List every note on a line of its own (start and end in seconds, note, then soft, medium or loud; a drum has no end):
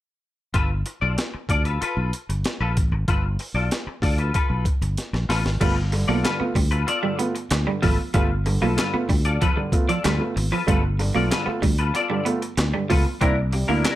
0.54 0.82 G1 loud
0.54 0.72 F4 medium
0.54 0.70 A4 medium
0.54 0.69 B4 loud
0.54 kick medium
0.54 closed hi-hat medium
0.70 muted clean electric guitar stroke soft
0.86 muted clean electric guitar stroke soft
0.86 closed hi-hat medium
1.01 1.16 B1 medium
1.01 1.16 F4 medium
1.01 1.16 A4 medium
1.01 1.16 D5 medium
1.17 muted clean electric guitar stroke soft
1.17 snare loud
1.17 closed hi-hat medium
1.34 muted clean electric guitar stroke soft
1.34 muted fingered electric bass stroke soft
1.49 1.77 D2 medium
1.49 1.64 F4 medium
1.49 1.64 A4 medium
1.49 1.64 D5 medium
1.49 kick medium
1.49 closed hi-hat medium
1.65 1.80 F4 soft
1.65 1.80 A4 medium
1.65 1.79 B4 medium
1.65 closed hi-hat soft
1.81 2.10 F4 medium
1.81 2.11 A4 loud
1.81 2.11 B4 loud
1.81 muted fingered electric bass stroke soft
1.81 closed hi-hat medium
1.97 2.11 B1 medium
2.13 muted clean electric guitar stroke soft
2.13 closed hi-hat medium
2.29 2.43 G1 medium
2.29 muted clean electric guitar stroke soft
2.29 closed hi-hat medium
2.44 muted clean electric guitar stroke soft
2.44 snare loud
2.44 closed hi-hat medium
2.60 2.77 A#1 medium
2.60 2.76 F4 medium
2.60 2.76 A4 medium
2.60 2.77 B4 medium
2.77 2.91 A1 medium
2.77 muted clean electric guitar stroke soft
2.77 kick medium
2.77 closed hi-hat medium
2.92 3.06 G#1 medium
2.92 muted clean electric guitar stroke medium
3.08 3.36 G1 loud
3.08 3.26 F4 medium
3.08 3.24 A4 medium
3.08 3.23 B4 medium
3.08 kick medium
3.08 closed hi-hat medium
3.24 muted clean electric guitar stroke soft
3.39 muted clean electric guitar stroke soft
3.39 open hi-hat medium
3.54 3.69 B1 medium
3.54 3.70 F4 medium
3.54 3.70 A4 medium
3.54 3.69 D5 medium
3.71 muted clean electric guitar stroke soft
3.71 snare loud
3.71 closed hi-hat medium
3.87 muted fingered electric bass stroke soft
3.87 muted clean electric guitar stroke soft
4.02 4.30 D2 medium
4.02 4.17 F4 medium
4.02 4.17 A4 medium
4.02 4.18 D5 medium
4.02 kick medium
4.02 open hi-hat medium
4.18 4.33 F4 soft
4.18 4.33 A4 medium
4.18 4.33 B4 medium
4.18 closed hi-hat soft
4.34 4.63 F4 medium
4.34 4.64 A4 loud
4.34 4.64 B4 loud
4.34 muted fingered electric bass stroke soft
4.34 kick medium
4.34 closed hi-hat medium
4.50 4.64 B1 medium
4.65 muted clean electric guitar stroke soft
4.65 kick medium
4.65 closed hi-hat medium
4.81 4.96 G1 medium
4.81 muted clean electric guitar stroke soft
4.81 closed hi-hat medium
4.97 snare medium
4.97 closed hi-hat medium
5.13 5.27 A#1 medium
5.13 muted clean electric guitar stroke soft
5.13 snare medium
5.29 5.43 A1 medium
5.29 5.48 F4 medium
5.29 5.45 A4 medium
5.29 5.44 B4 medium
5.29 snare medium
5.29 open hi-hat medium
5.45 5.59 G#1 medium
5.45 muted clean electric guitar stroke soft
5.45 snare medium
5.60 6.03 G1 loud
5.60 5.70 G3 medium
5.60 5.73 A3 medium
5.60 5.73 B3 medium
5.60 5.79 F4 medium
5.60 5.73 F4 medium
5.60 5.76 A4 loud
5.60 5.75 B4 medium
5.60 kick loud
5.60 closed hi-hat medium
5.60 crash medium
5.77 muted clean electric guitar stroke soft
5.92 6.05 G2 medium
5.92 6.05 D3 medium
5.92 muted clean electric guitar stroke soft
5.92 open hi-hat medium
6.08 6.23 B1 loud
6.08 6.21 A3 medium
6.08 6.18 A#3 medium
6.08 6.21 B3 medium
6.08 6.21 F4 medium
6.08 6.22 F4 medium
6.08 6.23 A4 medium
6.08 6.23 D5 medium
6.24 6.36 G2 medium
6.24 6.36 D3 medium
6.24 6.42 F4 medium
6.24 6.43 A4 medium
6.24 6.43 B4 loud
6.24 muted clean electric guitar stroke soft
6.24 snare loud
6.24 clap medium
6.24 closed hi-hat medium
6.40 6.52 A3 medium
6.40 6.49 B3 medium
6.40 6.52 B3 medium
6.40 6.52 F4 medium
6.40 muted fingered electric bass stroke soft
6.55 6.83 D2 medium
6.55 6.65 G3 medium
6.55 6.62 B3 soft
6.55 6.62 F4 soft
6.55 muted clean electric guitar stroke medium
6.55 kick medium
6.55 open hi-hat medium
6.71 6.86 F4 medium
6.71 6.86 A4 soft
6.71 6.86 B4 medium
6.71 closed hi-hat soft
6.87 6.94 B3 soft
6.87 7.17 F4 loud
6.87 6.94 F4 soft
6.87 7.17 A4 loud
6.87 7.17 D5 loud
6.87 muted clean electric guitar stroke soft
6.87 closed hi-hat medium
7.03 7.15 G2 medium
7.03 7.15 D3 medium
7.03 7.12 G3 medium
7.19 7.31 A3 medium
7.19 7.28 B3 medium
7.19 7.31 B3 medium
7.19 7.31 F4 medium
7.19 muted clean electric guitar stroke soft
7.19 closed hi-hat medium
7.35 muted clean electric guitar stroke soft
7.35 closed hi-hat medium
7.51 7.65 D2 medium
7.51 7.57 B3 soft
7.51 7.57 F4 soft
7.51 muted clean electric guitar stroke soft
7.51 snare loud
7.51 clap medium
7.51 closed hi-hat medium
7.66 7.79 G2 medium
7.66 7.79 D3 medium
7.66 7.76 G3 medium
7.66 muted clean electric guitar stroke medium
7.82 7.97 G#1 medium
7.82 7.92 F3 medium
7.82 7.95 A3 medium
7.82 7.95 B3 medium
7.82 8.01 F4 medium
7.82 7.95 F4 medium
7.82 7.98 A4 medium
7.82 7.97 B4 medium
7.82 kick loud
7.82 open hi-hat medium
7.98 muted clean electric guitar stroke soft
8.14 8.56 G1 loud
8.14 8.24 G3 medium
8.14 8.26 A3 medium
8.14 8.26 B3 medium
8.14 8.32 F4 medium
8.14 8.27 F4 loud
8.14 8.30 A4 medium
8.14 8.29 B4 medium
8.14 kick loud
8.14 closed hi-hat medium
8.30 muted clean electric guitar stroke medium
8.46 8.58 G2 medium
8.46 8.58 D3 medium
8.46 muted clean electric guitar stroke soft
8.46 open hi-hat medium
8.61 8.76 B1 loud
8.61 8.74 A3 medium
8.61 8.71 A#3 medium
8.61 8.74 B3 medium
8.61 8.74 F4 medium
8.61 8.76 F4 soft
8.61 8.77 A4 medium
8.61 8.76 B4 medium
8.77 8.90 G2 medium
8.77 8.90 D3 medium
8.77 8.96 F4 medium
8.77 8.96 A4 medium
8.77 8.96 B4 medium
8.77 muted clean electric guitar stroke soft
8.77 snare loud
8.77 clap medium
8.77 closed hi-hat loud
8.93 9.05 A3 medium
8.93 9.06 B3 medium
8.93 9.03 B3 medium
8.93 9.06 F4 medium
8.93 muted fingered electric bass stroke soft
9.09 9.37 D2 medium
9.09 9.19 G3 medium
9.09 9.16 B3 soft
9.09 9.16 F4 soft
9.09 muted clean electric guitar stroke soft
9.09 kick loud
9.09 open hi-hat medium
9.25 9.40 F4 soft
9.25 9.40 A4 medium
9.25 9.40 D5 medium
9.25 closed hi-hat medium
9.41 9.51 F3 medium
9.41 9.47 B3 soft
9.41 9.59 F4 medium
9.41 9.48 F4 soft
9.41 9.60 A4 loud
9.41 9.60 B4 loud
9.41 kick medium
9.41 closed hi-hat medium
9.56 9.69 G2 medium
9.56 9.69 D3 medium
9.56 muted clean electric guitar stroke soft
9.72 9.85 A3 medium
9.72 9.85 B3 medium
9.72 9.85 F4 medium
9.72 muted clean electric guitar stroke soft
9.72 kick loud
9.72 closed hi-hat medium
9.89 9.98 F3 medium
9.89 10.03 F4 medium
9.89 10.03 A4 medium
9.89 10.03 D5 medium
9.89 closed hi-hat medium
10.04 10.19 D2 loud
10.04 10.16 G2 medium
10.04 10.16 D3 medium
10.04 10.14 G3 medium
10.04 10.23 F4 medium
10.04 10.23 A4 medium
10.04 10.23 B4 medium
10.04 snare loud
10.04 clap medium
10.04 closed hi-hat medium
10.19 10.32 A3 medium
10.19 10.32 B3 medium
10.19 10.32 F4 medium
10.36 10.50 G#1 medium
10.36 10.42 B3 soft
10.36 10.42 F4 soft
10.36 muted clean electric guitar stroke soft
10.36 open hi-hat medium
10.52 10.61 F3 medium
10.52 10.67 F4 medium
10.52 10.67 A4 medium
10.52 10.66 B4 medium
10.67 11.10 G1 loud
10.67 10.77 G3 medium
10.67 10.79 A3 loud
10.67 10.80 B3 medium
10.67 10.80 F4 loud
10.67 10.86 F4 medium
10.67 10.84 A4 loud
10.67 10.83 B4 medium
10.67 kick loud
10.67 closed hi-hat medium
10.84 muted clean electric guitar stroke soft
10.99 11.11 G2 medium
10.99 11.11 D3 medium
10.99 muted clean electric guitar stroke soft
10.99 open hi-hat medium
11.15 11.30 B1 medium
11.15 11.27 A3 medium
11.15 11.24 A#3 medium
11.15 11.27 B3 medium
11.15 11.28 F4 medium
11.15 11.30 F4 medium
11.15 11.30 A4 medium
11.15 11.30 D5 medium
11.31 11.43 G2 medium
11.31 11.43 D3 medium
11.31 11.49 F4 medium
11.31 11.50 A4 medium
11.31 11.50 B4 medium
11.31 muted clean electric guitar stroke soft
11.31 snare loud
11.31 clap medium
11.31 closed hi-hat loud
11.46 11.59 A3 medium
11.46 11.56 B3 medium
11.46 11.59 B3 medium
11.46 11.59 F4 medium
11.46 muted fingered electric bass stroke soft
11.62 11.90 D2 medium
11.62 11.72 G3 medium
11.62 11.69 B3 soft
11.62 11.69 F4 soft
11.62 muted clean electric guitar stroke soft
11.62 kick loud
11.62 open hi-hat medium
11.78 11.93 F4 soft
11.78 11.93 A4 medium
11.78 11.93 B4 medium
11.78 closed hi-hat soft
11.94 12.01 B3 soft
11.94 12.24 F4 medium
11.94 12.01 F4 soft
11.94 12.24 A4 medium
11.94 12.24 D5 loud
11.94 muted clean electric guitar stroke soft
11.94 closed hi-hat medium
12.10 12.22 G2 medium
12.10 12.22 D3 medium
12.10 12.19 G3 medium
12.25 12.38 A3 medium
12.25 12.35 B3 medium
12.25 12.38 B3 medium
12.25 12.38 F4 medium
12.25 muted clean electric guitar stroke soft
12.25 closed hi-hat medium
12.42 muted clean electric guitar stroke soft
12.42 closed hi-hat medium
12.57 12.72 D2 medium
12.57 12.64 B3 soft
12.57 12.64 F4 soft
12.57 muted clean electric guitar stroke soft
12.57 snare loud
12.57 clap medium
12.57 closed hi-hat medium
12.74 12.86 G2 medium
12.74 12.86 D3 medium
12.74 12.83 G3 medium
12.74 muted clean electric guitar stroke medium
12.89 13.04 C#2 medium
12.89 12.99 F3 medium
12.89 13.01 A3 medium
12.89 13.02 B3 medium
12.89 13.08 F4 medium
12.89 13.02 F4 medium
12.89 13.05 A4 medium
12.89 13.04 B4 medium
12.89 kick loud
12.89 open hi-hat medium
13.05 muted clean electric guitar stroke medium
13.21 13.63 C2 loud
13.21 13.33 A#3 medium
13.21 13.30 C4 medium
13.21 13.39 D4 medium
13.21 13.33 D4 medium
13.21 13.36 E4 medium
13.21 13.34 E4 loud
13.21 13.35 A#4 loud
13.21 kick loud
13.21 closed hi-hat medium
13.37 muted clean electric guitar stroke soft
13.52 13.65 C3 medium
13.52 13.65 G3 medium
13.52 muted clean electric guitar stroke soft
13.52 open hi-hat medium
13.68 13.83 D2 loud
13.68 13.78 A#3 medium
13.68 13.81 A#3 medium
13.68 13.81 D4 medium
13.68 13.83 D4 medium
13.68 13.83 E4 medium
13.68 13.81 E4 medium
13.68 13.83 A#4 medium
13.84 13.95 C3 medium
13.84 13.95 G3 medium
13.84 13.95 D4 medium
13.84 13.95 E4 loud
13.84 13.95 A#4 medium
13.84 muted clean electric guitar stroke soft
13.84 snare loud
13.84 clap medium
13.84 closed hi-hat loud